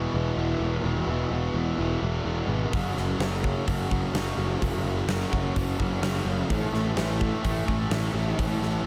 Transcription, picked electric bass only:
0.14 0.30 E1 medium
0.36 0.53 E1 medium
0.60 0.77 E1 medium
0.83 1.00 E1 medium
1.07 1.24 E1 medium
1.31 1.48 E1 medium
1.54 1.71 E1 medium
1.78 1.95 E1 medium
2.02 2.19 E1 medium
2.25 2.42 E1 medium
2.47 2.65 G#1 medium
2.73 2.90 F#1 medium
2.96 3.13 F#1 medium
3.20 3.54 F#1 medium
3.67 3.84 F#1 medium
3.91 4.08 F#1 medium
4.14 4.31 F#1 medium
4.37 4.54 F#1 medium
4.62 4.79 F#1 medium
4.84 5.01 F#1 medium
5.06 5.24 F#1 medium
5.32 5.49 F#1 medium
5.56 5.73 F#1 medium
5.79 5.96 F#1 medium
6.01 6.19 F#1 medium
6.24 6.42 F#1 medium
6.50 6.67 A1 medium
6.72 6.90 A1 medium
6.95 7.30 A1 medium
7.44 7.61 A1 medium
7.68 7.85 A1 medium
7.90 8.07 A1 medium
8.13 8.31 A1 medium
8.38 8.55 A1 medium
8.60 8.78 A1 medium

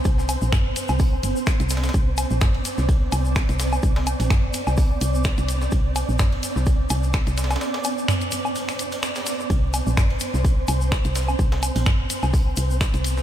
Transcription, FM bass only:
0.05 0.37 C2 medium
0.42 0.72 A#1 medium
0.89 1.19 C2 medium
1.23 1.33 G1 medium
1.60 1.90 C2 loud
1.94 2.26 C2 loud
2.31 2.61 A#1 medium
2.78 3.08 C2 medium
3.12 3.44 C2 loud
3.49 3.79 C2 loud
3.83 4.15 C2 loud
4.20 4.50 A#1 medium
4.67 4.97 C2 medium
5.01 5.33 C2 loud
5.38 5.68 C2 loud
5.72 6.04 C2 loud
6.09 6.39 A#1 medium
6.56 6.86 C2 medium
6.90 7.22 C2 loud
7.27 7.57 C2 loud
9.50 9.82 C2 loud
9.87 10.17 A#1 loud
10.34 10.64 C2 medium
10.68 11.00 C2 loud
11.05 11.35 C2 loud
11.39 11.71 C2 loud
11.76 12.06 A#1 loud
12.23 12.53 C2 medium
12.57 12.89 C2 loud
12.94 13.22 C2 loud

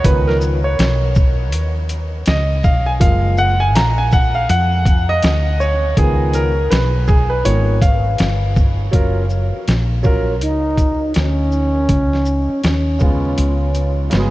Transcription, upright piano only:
0.04 0.56 D#3 medium
0.04 0.57 F3 medium
0.04 0.57 B3 medium
0.04 0.28 B4 loud
0.27 0.36 A#4 medium
0.64 1.71 C#5 medium
2.28 2.66 D#5 loud
2.64 2.84 F5 medium
2.86 2.91 G#5 medium
3.00 3.52 F3 medium
3.00 3.53 G#3 soft
3.00 3.53 A#3 medium
3.00 3.35 F5 loud
3.38 3.61 F#5 loud
3.60 3.75 G#5 loud
3.75 3.96 A#5 loud
3.98 4.13 G#5 loud
4.13 4.35 F#5 loud
4.35 4.50 F5 loud
4.50 5.10 F#5 loud
5.09 5.62 D#5 loud
5.60 5.95 C#5 medium
5.97 6.49 D#3 medium
5.97 6.50 F3 soft
5.97 6.50 B3 medium
5.97 6.36 G#4 medium
6.34 6.72 A#4 medium
6.70 7.05 B4 medium
7.08 7.28 G#4 medium
7.30 7.44 B4 medium
7.45 7.78 D#3 soft
7.45 7.78 F3 soft
7.45 7.79 B3 soft
7.45 7.83 C#5 medium
7.82 8.52 F5 medium
8.91 9.20 F#3 medium
8.91 9.21 C#4 medium
8.91 9.22 F4 medium
8.91 9.22 A#4 medium
10.03 10.32 F#3 medium
10.03 10.32 C#4 medium
10.03 10.33 F4 medium
10.03 10.33 A#4 medium
12.99 14.05 C#3 medium
12.99 14.06 G#3 medium
12.99 14.06 B3 medium
12.99 14.07 F4 medium
14.10 14.30 C#3 medium
14.10 14.30 G#3 medium
14.10 14.30 B3 medium
14.10 14.20 F#4 medium
14.20 14.30 G#4 medium

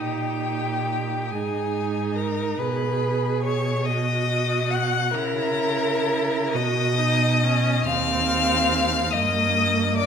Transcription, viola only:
0.00 1.32 D#4 medium
1.32 2.61 D#4 medium
2.59 3.89 G#4 medium
3.88 5.15 F#4 medium
5.15 6.55 E4 medium
6.53 7.00 F#4 medium
6.98 7.44 D#4 medium
7.43 7.87 C#4 medium
7.85 9.12 C4 medium
9.13 10.06 A#3 medium

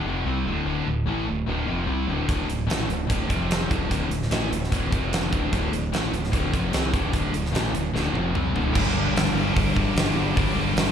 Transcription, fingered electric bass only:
0.05 0.24 F1 medium
0.24 0.44 C2 medium
0.45 0.64 D1 medium
0.65 0.85 D1 medium
0.86 1.05 D1 medium
1.06 1.25 A1 medium
1.27 1.46 D1 medium
1.48 1.67 D1 medium
1.67 1.86 F1 medium
1.87 2.06 C2 medium
2.07 2.26 D1 medium
2.29 2.47 D1 medium
2.49 2.67 D1 medium
2.68 2.87 A1 medium
2.87 3.07 D1 medium
3.10 3.29 D1 medium
3.30 3.67 F1 loud
3.71 3.89 D1 medium
3.90 4.08 D1 medium
4.09 4.28 D1 medium
4.30 4.49 A1 medium
4.50 4.69 D1 medium
4.72 4.90 D1 medium
4.92 5.29 F1 medium
5.33 5.51 D1 medium
5.52 5.71 D1 medium
5.71 5.90 D1 medium
5.91 6.10 A1 medium
6.11 6.31 D1 medium
6.33 6.52 D1 medium
6.54 6.72 F1 loud
6.74 6.92 C2 medium
6.93 7.12 D1 medium
7.13 7.32 D1 medium
7.33 7.52 D1 medium
7.54 7.72 A1 medium
7.73 7.92 D1 medium
7.94 8.13 D1 medium
8.13 8.32 F1 medium
8.34 8.53 C2 medium
8.53 8.73 D1 medium
8.75 9.06 G1 medium
9.14 9.30 G1 medium
9.34 9.50 G1 loud
9.56 9.71 G1 medium
9.76 9.91 G1 medium
9.95 10.11 G1 loud
10.15 10.31 G1 loud
10.37 10.52 G1 medium
10.56 10.71 G1 loud
10.76 10.92 G1 medium

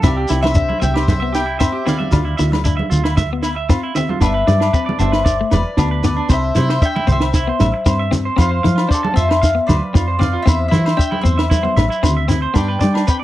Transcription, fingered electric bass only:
0.04 0.25 C2 loud
0.30 0.72 C2 medium
0.83 1.66 C2 medium
2.13 2.34 D2 loud
2.40 2.82 D2 medium
2.92 3.75 D2 medium
4.21 4.43 G1 medium
4.48 4.69 G2 medium
5.01 5.42 G1 medium
5.53 5.63 E1 medium
5.78 6.20 D2 medium
6.29 6.51 C2 medium
6.57 6.78 C3 medium
7.08 7.50 C2 medium
7.61 7.72 A1 medium
7.86 8.28 G2 medium
8.38 8.60 F2 medium
8.65 8.86 F3 medium
9.17 9.59 F2 medium
9.69 9.80 D2 loud
9.95 10.37 F2 medium
10.47 10.68 E2 medium
10.72 10.93 E3 loud
11.25 11.67 E2 medium
11.77 11.88 A1 medium
12.04 12.46 D2 medium
12.56 12.77 G2 loud
12.83 13.04 G3 medium

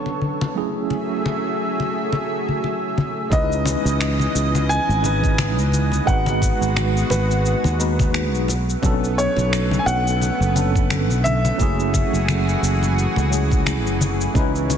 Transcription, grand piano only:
3.33 4.74 D#5 medium
4.69 6.11 G#5 loud
6.07 7.14 F#5 loud
7.10 8.45 B4 medium
9.18 9.83 C#5 medium
9.79 9.86 G#5 medium
9.86 11.20 F#5 loud
11.24 12.58 E5 loud

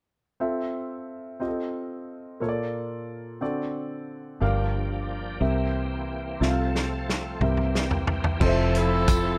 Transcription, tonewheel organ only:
4.41 5.42 F3 soft
4.41 4.48 A3 soft
4.41 5.42 D4 soft
4.41 5.39 G4 medium
4.47 5.39 A#3 soft
5.40 5.47 D#3 soft
5.40 6.41 A#3 soft
5.40 6.40 C4 soft
5.40 6.41 G4 medium
5.47 6.45 E3 medium
6.41 7.42 F3 soft
6.41 7.42 A3 soft
6.41 7.39 C4 soft
6.41 7.42 A4 medium
7.40 8.41 E3 medium
7.40 8.41 A#3 soft
7.40 8.38 C4 soft
7.40 8.41 G4 medium
8.40 9.38 F3 medium
8.40 9.38 C4 medium
8.40 9.38 E4 medium
8.40 9.38 A4 medium

